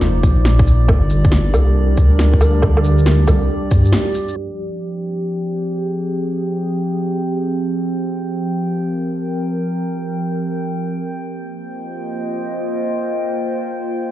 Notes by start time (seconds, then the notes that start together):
Already playing: A#3 D#4 F4 C5 D5
0.01 F1, snare
0.23 A#1, kick, cabasa, shaker
0.45 snare
0.59 kick
0.67 cabasa, shaker
0.88 G1 G3, kick, low woodblock
0.99 D4 G4
1.10 cabasa, shaker
1.24 A#4, kick, shaker
1.32 snare
1.54 C2, cabasa, low woodblock, shaker
1.97 D2, kick, cabasa, shaker
2.19 snare
2.33 kick
2.41 cabasa, low woodblock, shaker
2.62 kick, low woodblock
2.77 low woodblock
2.84 cabasa, shaker
2.98 shaker
3.06 snare
3.27 C2, kick, cabasa, low woodblock, shaker
3.71 G2, kick, cabasa, shaker
3.85 shaker
3.92 snare
4.15 cabasa, shaker
4.28 shaker
4.37 F3 G5
4.53 C4
5.19 G#4
8.43 A#4
11.31 A#3
11.39 C5
11.54 F4
11.63 D#5